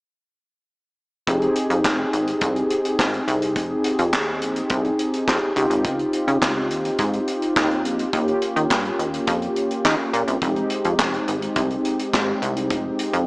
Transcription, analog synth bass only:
1.27 1.48 F1 loud
1.70 1.80 F2 medium
1.84 2.05 F1 medium
2.13 2.33 G#1 medium
2.42 2.62 C2 medium
2.99 3.19 G#1 medium
3.28 3.57 C2 medium
3.56 3.76 F1 loud
3.99 4.14 F2 medium
4.13 4.43 D#2 medium
4.42 4.62 A#1 medium
4.70 4.90 C2 loud
5.28 5.38 F2 loud
5.56 5.66 C#2 loud
5.70 5.86 G#1 medium
5.85 6.05 C#2 loud
6.28 6.38 C#3 medium
6.42 6.72 C#2 medium
6.70 6.91 D#2 medium
6.99 7.19 G#2 medium
7.56 7.86 D#2 loud
7.85 8.05 A#1 medium
8.13 8.33 D#2 loud
8.56 8.66 D#3 medium
8.70 8.91 G2 medium
8.99 9.19 D#2 medium
9.28 9.48 F2 medium
9.85 9.95 D#3 loud
10.13 10.23 A#2 medium
10.28 10.38 C2 medium
10.42 10.62 F1 loud
10.85 10.95 F2 medium
10.99 11.19 F1 medium
11.28 11.48 G#1 medium
11.56 11.76 C2 loud
12.13 12.34 G#1 loud
12.42 12.72 C2 medium
12.70 12.91 F1 loud
13.13 13.27 F2 loud

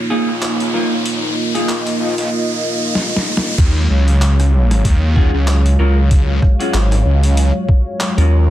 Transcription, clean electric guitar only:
0.10 0.29 A#3 medium
0.10 0.29 D#4 medium
0.10 0.29 F4 medium
0.10 0.29 G#4 loud
0.74 0.93 A#3 medium
0.74 0.93 D#4 medium
0.74 0.93 F4 medium
0.74 0.93 A#4 medium
1.55 1.70 A#3 medium
1.55 1.70 D#4 medium
1.55 1.70 F4 medium
1.55 1.70 G#4 medium
5.16 5.35 C#4 medium
5.16 5.35 F4 medium
5.16 5.35 F#4 medium
5.16 5.35 G#4 loud
5.79 5.98 C#4 medium
5.79 5.98 F4 medium
5.79 5.98 F#4 medium
5.79 5.98 A#4 medium
6.60 6.75 C#4 medium
6.60 6.75 F4 medium
6.60 6.75 F#4 medium
6.60 6.75 G#4 medium
8.18 8.50 C#4 medium
8.18 8.50 F4 medium
8.18 8.50 F#4 medium
8.18 8.50 A#4 medium

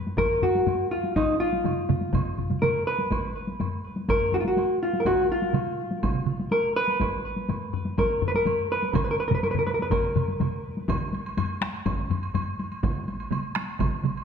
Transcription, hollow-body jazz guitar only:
0.00 0.18 B4 loud
0.18 0.44 A#4 medium
0.43 0.91 F#4 medium
0.91 1.16 F4 medium
1.16 1.39 D#4 medium
1.40 2.58 F4 medium
2.62 2.87 A#4 medium
2.87 4.10 B4 medium
4.10 4.34 A#4 medium
4.34 4.40 F#4 medium
4.40 4.47 F4 medium
4.48 4.80 F#4 medium
4.83 5.01 F4 medium
5.00 5.06 A#4 medium
5.07 5.31 F#4 medium
5.32 6.56 F4 medium
6.52 6.76 A#4 medium
6.76 7.98 B4 medium
7.99 8.27 A#4 medium
8.28 8.35 B4 medium
8.36 8.69 A#4 medium
8.72 8.95 B4 medium
8.96 9.03 A#4 medium
9.04 9.11 B4 medium
9.11 9.19 A#4 medium
9.20 9.27 B4 medium
9.28 9.34 A#4 medium
9.35 9.43 B4 medium
9.43 9.51 A#4 medium
9.51 9.58 B4 medium
9.59 9.66 A#4 medium
9.67 9.74 B4 medium
9.74 9.82 A#4 medium
9.82 9.91 B4 medium
9.91 10.37 A#4 medium

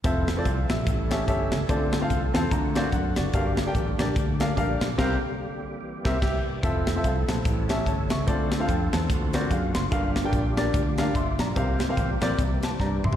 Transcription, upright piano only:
0.04 0.27 C4 medium
0.04 0.27 F4 medium
0.04 0.27 A4 medium
0.04 0.27 E5 medium
0.37 0.56 C4 medium
0.37 0.56 F4 medium
0.37 0.45 A4 medium
0.37 0.46 D5 medium
0.46 0.69 A4 soft
0.46 0.69 F5 medium
0.71 1.10 G4 soft
0.71 1.09 E5 medium
0.87 1.49 A2 medium
1.11 1.21 C#4 medium
1.11 1.22 G4 medium
1.11 1.22 A4 medium
1.11 1.22 E5 medium
1.28 1.56 C#4 medium
1.28 1.56 G4 medium
1.28 1.56 A4 medium
1.28 1.57 E5 medium
1.69 2.31 D3 medium
1.69 1.92 C4 medium
1.69 1.92 F4 medium
1.69 1.92 A4 medium
1.69 1.92 D5 medium
2.01 2.20 C4 medium
2.01 2.21 F4 medium
2.01 2.21 A4 medium
2.01 2.21 F5 medium
2.34 2.51 C4 medium
2.34 2.51 F4 medium
2.34 2.51 A4 medium
2.34 2.52 F5 medium
2.34 2.50 A5 medium
2.51 3.13 D3 medium
2.51 2.74 A#5 medium
2.75 2.86 C4 medium
2.75 2.86 F#4 medium
2.75 2.86 A#4 medium
2.75 2.87 D5 medium
2.75 2.92 F5 medium
2.93 3.16 A#4 medium
2.93 3.15 F#5 medium
3.17 3.56 F#4 medium
3.17 3.33 D5 medium
3.34 3.95 G2 medium
3.34 3.56 D4 medium
3.34 3.56 G4 medium
3.34 3.57 A#4 medium
3.34 3.57 F5 medium
3.66 3.85 D4 medium
3.66 3.85 G4 medium
3.66 3.86 A#4 medium
3.66 3.86 G5 medium
3.99 4.22 D4 medium
3.99 4.22 G4 medium
3.99 4.22 A#4 medium
3.99 4.22 D5 medium
4.40 4.51 D4 medium
4.40 4.51 G4 medium
4.40 4.51 A#4 medium
4.40 4.51 F5 medium
4.56 4.85 D4 medium
4.56 4.85 G4 medium
4.56 4.86 A#4 medium
4.56 4.86 F5 medium
4.98 5.15 C3 medium
4.98 5.15 C4 medium
4.98 5.15 G4 loud
4.98 5.15 A#4 loud
4.98 5.15 F5 medium
6.05 6.16 C4 medium
6.05 6.17 G4 medium
6.05 6.17 A#4 medium
6.05 6.17 E5 medium
6.22 6.39 G4 medium
6.22 6.38 E5 medium
6.63 6.85 C4 medium
6.63 6.86 F4 medium
6.63 6.86 A4 medium
6.63 6.86 E5 medium
6.96 7.14 C4 medium
6.96 7.15 F4 medium
6.96 7.04 A4 medium
6.96 7.05 E5 medium
7.05 7.28 A4 medium
7.05 7.28 F5 medium
7.29 7.68 C5 medium
7.29 7.68 A5 medium
7.46 8.07 A2 medium
7.69 7.85 C#4 medium
7.69 7.85 G4 medium
7.69 7.85 A4 medium
7.69 7.86 E5 medium
7.87 8.10 C#5 medium
7.87 8.10 A5 medium
8.11 8.50 E5 medium
8.11 8.50 C#6 medium
8.27 8.89 D3 medium
8.27 8.50 C4 medium
8.27 8.50 F4 medium
8.27 8.50 A4 medium
8.27 8.50 D5 medium
8.60 8.79 C4 medium
8.60 8.79 F4 medium
8.60 8.79 A4 medium
8.60 8.69 F5 medium
8.69 8.92 G5 medium
8.93 9.33 C5 medium
8.93 9.32 A5 medium
9.10 9.71 D3 medium
9.34 9.49 C4 medium
9.34 9.50 F#4 medium
9.34 9.50 A#4 medium
9.34 9.50 D5 medium
9.51 9.74 G#4 medium
9.51 9.74 F5 medium
9.75 10.14 C6 medium
9.91 10.53 G2 medium
9.91 10.14 D4 medium
9.91 10.14 G4 medium
9.91 10.14 A#4 medium
9.91 10.14 F5 medium
10.24 10.43 D4 medium
10.24 10.43 G4 medium
10.24 10.43 A#4 medium
10.24 10.44 G5 medium
10.57 10.79 D4 medium
10.57 10.80 G4 medium
10.57 10.80 A#4 medium
10.57 10.80 D5 medium
10.98 11.14 D4 medium
10.98 11.14 G4 medium
10.98 11.14 A#4 medium
10.98 11.14 F5 medium
11.15 11.38 E5 medium
11.15 11.38 C6 medium
11.40 11.79 D5 medium
11.40 11.79 A#5 medium
11.56 12.18 C3 medium
11.56 11.78 C4 medium
11.56 11.79 G4 medium
11.56 11.79 A#4 medium
11.56 11.79 F5 medium
11.89 12.08 C4 medium
11.89 12.08 G4 medium
11.89 12.08 A#4 medium
11.89 12.08 F5 medium
12.21 12.38 C4 medium
12.21 12.38 G4 medium
12.21 12.39 A#4 medium
12.21 12.39 D5 medium
12.39 13.00 C3 medium
12.63 12.79 C5 soft
12.63 12.79 A5 medium
12.80 13.03 D5 medium
12.80 13.03 A#5 medium
13.05 13.16 E5 soft
13.05 13.16 C6 medium

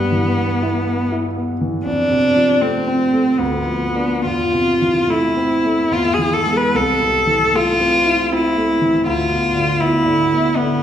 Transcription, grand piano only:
0.00 1.83 G2 soft
0.00 0.27 G3 soft
0.12 0.52 E3 soft
0.37 0.77 B3 soft
0.62 1.02 E4 soft
0.87 1.27 B3 soft
1.12 1.52 E4 soft
1.37 1.77 B3 soft
1.61 1.87 E3 soft
1.86 3.36 F2 soft
2.11 2.52 C3 soft
2.36 2.77 F3 soft
2.61 3.03 A3 soft
2.87 3.29 C4 soft
3.13 3.40 A3 soft
3.38 4.23 D2 soft
3.66 4.14 F3 soft
3.95 4.22 B3 soft
3.95 4.23 D4 soft
4.25 5.87 E2 soft
4.54 4.99 C3 soft
4.82 5.26 E3 soft
5.08 5.53 A3 soft
5.37 5.81 C4 soft
5.64 5.92 A3 soft
5.91 6.71 E2 soft
6.19 6.63 E3 soft
6.46 6.71 G#3 soft
6.46 6.71 B3 soft
6.74 9.03 C2 soft
7.01 7.43 C3 soft
7.27 7.69 E3 soft
7.54 7.95 A3 soft
7.80 8.21 C4 soft
8.06 8.47 E4 soft
8.32 8.72 C4 soft
8.57 8.97 A3 soft
8.82 9.06 E3 soft
9.06 10.83 D2 soft
9.31 9.71 B2 soft
9.55 9.96 D3 soft
9.80 10.21 B3 soft
10.06 10.47 D3 soft
10.32 10.73 B3 soft
10.57 10.83 D3 soft

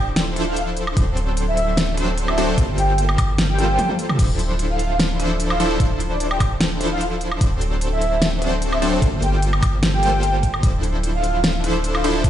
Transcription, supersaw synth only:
0.00 0.34 F3 medium
0.00 0.34 D4 medium
0.00 0.34 E4 medium
0.00 0.34 A4 medium
0.00 0.34 C5 medium
0.36 0.94 F3 medium
0.36 0.94 D4 medium
0.36 0.94 E4 medium
0.36 0.94 A4 medium
0.36 0.94 C5 medium
0.97 1.95 F#3 medium
0.97 1.95 C4 medium
0.97 1.95 D4 medium
0.97 1.95 A4 medium
0.97 1.95 C5 loud
1.97 2.35 F#3 medium
1.97 2.35 C4 medium
1.97 2.35 D4 medium
1.97 2.35 A4 medium
1.97 2.35 C5 medium
2.38 2.56 F#3 medium
2.38 2.56 C4 medium
2.38 2.56 D4 medium
2.38 2.56 A4 medium
2.38 2.56 C5 loud
2.58 3.56 G3 medium
2.58 3.56 A#3 medium
2.58 3.56 F4 medium
2.58 3.56 A4 medium
2.58 3.56 C5 medium
3.59 4.17 G3 medium
3.59 4.17 A#3 medium
3.59 4.17 F4 medium
3.59 4.17 A4 medium
3.59 4.17 C5 medium
4.19 5.17 F3 medium
4.19 5.17 D4 medium
4.19 5.17 E4 medium
4.19 5.17 A4 medium
4.19 5.17 C5 loud
5.20 5.58 F3 medium
5.20 5.58 D4 medium
5.20 5.58 E4 medium
5.20 5.58 A4 medium
5.20 5.58 C5 medium
5.60 5.78 F3 medium
5.60 5.78 D4 medium
5.60 5.78 E4 medium
5.60 5.78 A4 medium
5.60 5.78 C5 loud
5.80 6.78 F3 medium
5.80 6.78 D4 medium
5.80 6.78 E4 medium
5.80 6.78 A4 medium
5.80 6.78 C5 medium
6.81 7.39 F3 medium
6.81 7.39 D4 medium
6.81 7.39 E4 medium
6.81 7.39 A4 medium
6.81 7.39 C5 medium
7.41 8.39 F#3 medium
7.41 8.39 C4 medium
7.41 8.39 D4 medium
7.41 8.39 A4 medium
7.41 8.39 C5 loud
8.42 8.80 F#3 medium
8.42 8.80 C4 medium
8.42 8.80 D4 medium
8.42 8.80 A4 medium
8.42 8.80 C5 medium
8.82 9.00 F#3 medium
8.82 9.00 C4 medium
8.82 9.00 D4 medium
8.82 9.00 A4 medium
8.82 9.00 C5 loud
9.02 10.01 G3 medium
9.02 10.01 A#3 medium
9.02 10.01 F4 medium
9.02 10.01 A4 medium
10.03 10.61 G3 medium
10.03 10.61 A#3 medium
10.03 10.61 F4 medium
10.03 10.61 A4 medium
10.03 10.61 C5 medium
10.63 11.62 F3 medium
10.63 11.62 D4 medium
10.63 11.62 E4 medium
10.63 11.62 A4 medium
10.63 11.62 C5 loud
11.64 12.02 F3 medium
11.64 12.02 D4 medium
11.64 12.02 E4 medium
11.64 12.02 A4 medium
11.64 12.02 C5 medium
12.04 12.22 F3 medium
12.04 12.22 D4 medium
12.04 12.22 E4 medium
12.04 12.22 A4 medium
12.04 12.22 C5 loud
12.24 12.30 F3 medium
12.24 12.30 D4 medium
12.24 12.30 A4 medium

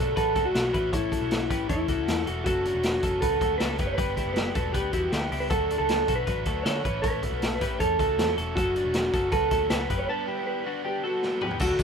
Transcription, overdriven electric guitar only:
0.00 0.34 D3 medium
0.00 0.35 F#3 medium
0.00 0.37 A3 medium
0.00 0.36 D4 medium
0.35 0.64 D3 medium
0.35 0.65 F#3 medium
0.35 0.64 A3 medium
0.35 0.62 D4 medium
0.64 0.74 F#3 soft
0.64 0.74 A3 soft
0.64 0.74 D4 soft
0.74 0.92 E3 medium
0.74 0.93 A3 medium
0.74 0.93 C#4 medium
0.74 0.93 E4 medium
0.93 1.22 A2 medium
0.93 1.22 E3 medium
0.93 1.22 A3 medium
0.93 1.22 C#4 medium
0.93 1.21 E4 medium
1.22 1.49 A3 soft
1.22 1.51 C#4 soft
1.22 1.51 E4 soft
1.50 1.87 E3 medium
1.50 1.88 A3 medium
1.50 1.89 C#4 medium
1.50 1.89 E4 medium
1.88 2.17 E3 medium
1.88 2.17 A3 medium
1.88 2.17 C#4 medium
1.88 2.15 E4 medium
2.17 2.26 A3 soft
2.17 2.27 C#4 medium
2.17 2.26 E4 medium
2.26 2.46 E3 medium
2.26 2.46 A3 medium
2.26 2.46 C#4 medium
2.26 2.47 E4 medium
2.46 2.75 F#2 medium
2.46 2.75 C#3 medium
2.46 2.75 F#3 medium
2.46 2.74 A3 medium
2.46 2.73 C#4 medium
2.74 3.02 F#3 soft
2.74 3.03 A3 soft
2.74 3.03 C#4 medium
3.02 3.38 C#3 medium
3.02 3.40 F#3 medium
3.02 3.40 A3 medium
3.02 3.41 C#4 medium
3.40 3.69 C#3 medium
3.40 3.70 F#3 medium
3.40 3.68 A3 medium
3.40 3.67 C#4 medium
3.68 3.77 F#3 soft
3.68 3.78 A3 soft
3.68 3.79 C#4 soft
3.78 3.97 C#3 medium
3.78 3.98 F#3 medium
3.78 3.98 A3 medium
3.78 3.99 C#4 medium
3.97 4.26 G2 medium
3.97 4.27 D3 medium
3.97 4.27 G3 medium
3.97 4.26 B3 medium
3.97 4.25 D4 medium
4.26 4.54 G3 soft
4.26 4.54 B3 soft
4.26 4.55 D4 soft
4.54 4.91 D3 medium
4.54 4.92 G3 medium
4.54 4.93 B3 medium
4.54 4.93 D4 medium
4.92 5.22 D3 medium
4.92 5.22 G3 medium
4.92 5.21 B3 medium
4.92 5.20 D4 medium
5.21 5.30 G3 soft
5.21 5.31 B3 soft
5.21 5.31 D4 medium
5.30 5.49 D3 medium
5.30 5.50 G3 medium
5.30 5.51 B3 medium
5.30 5.50 D4 medium
5.50 5.79 D3 medium
5.50 5.79 F#3 medium
5.50 5.79 A3 medium
5.50 5.77 D4 medium
5.78 6.07 F#3 soft
5.78 6.07 A3 soft
5.78 6.08 D4 soft
6.07 6.44 D3 soft
6.07 6.45 F#3 medium
6.07 6.47 A3 medium
6.07 6.46 D4 medium
6.45 6.75 D3 medium
6.45 6.75 F#3 medium
6.45 6.75 A3 medium
6.45 6.73 D4 medium
6.74 6.84 F#3 soft
6.74 6.84 A3 soft
6.74 6.84 D4 soft
6.84 7.02 E3 medium
6.84 7.03 A3 medium
6.84 7.03 C#4 medium
6.84 7.03 E4 medium
7.03 7.32 A2 medium
7.03 7.32 E3 medium
7.03 7.32 A3 medium
7.03 7.32 C#4 medium
7.03 7.31 E4 medium
7.32 7.60 A3 soft
7.32 7.61 C#4 soft
7.32 7.61 E4 soft
7.60 7.96 E3 medium
7.60 7.99 A3 medium
7.60 8.00 C#4 medium
7.60 8.00 E4 medium
7.97 8.27 E3 medium
7.97 8.28 A3 medium
7.97 8.27 C#4 medium
7.97 8.26 E4 medium
8.27 8.36 A3 soft
8.27 8.37 C#4 medium
8.27 8.37 E4 medium
8.37 8.55 E3 medium
8.37 8.55 A3 medium
8.37 8.56 C#4 medium
8.37 8.57 E4 medium
8.55 8.84 F#2 medium
8.55 8.84 C#3 medium
8.55 8.85 F#3 medium
8.55 8.83 A3 medium
8.55 8.82 C#4 medium
8.84 9.11 F#3 soft
8.84 9.12 A3 soft
8.84 9.13 C#4 soft
9.12 9.49 C#3 medium
9.12 9.50 F#3 medium
9.12 9.51 A3 medium
9.12 9.52 C#4 medium
9.50 9.79 C#3 medium
9.50 9.80 F#3 medium
9.50 9.80 A3 medium
9.50 9.78 C#4 medium
9.79 9.89 F#3 soft
9.79 9.90 A3 soft
9.79 9.89 C#4 soft
9.89 10.09 C#3 medium
9.89 10.09 F#3 medium
9.89 10.09 A3 medium
9.89 10.10 C#4 medium
10.09 10.37 G2 medium
10.09 10.38 D3 medium
10.09 10.38 G3 medium
10.09 10.37 B3 medium
10.09 10.35 D4 medium
10.37 10.64 G3 soft
10.37 10.65 B3 soft
10.37 10.66 D4 soft
10.64 11.02 D3 medium
10.64 11.03 G3 medium
10.64 11.04 B3 medium
10.64 11.04 D4 medium
11.03 11.32 D3 medium
11.03 11.33 G3 medium
11.03 11.31 B3 medium
11.03 11.30 D4 medium
11.32 11.41 G3 soft
11.32 11.41 B3 soft
11.32 11.42 D4 soft
11.41 11.59 D3 medium
11.41 11.61 G3 medium
11.41 11.61 B3 medium
11.41 11.61 D4 medium
11.60 11.83 D3 medium
11.60 11.83 F#3 medium
11.60 11.83 A3 medium
11.60 11.83 D4 medium

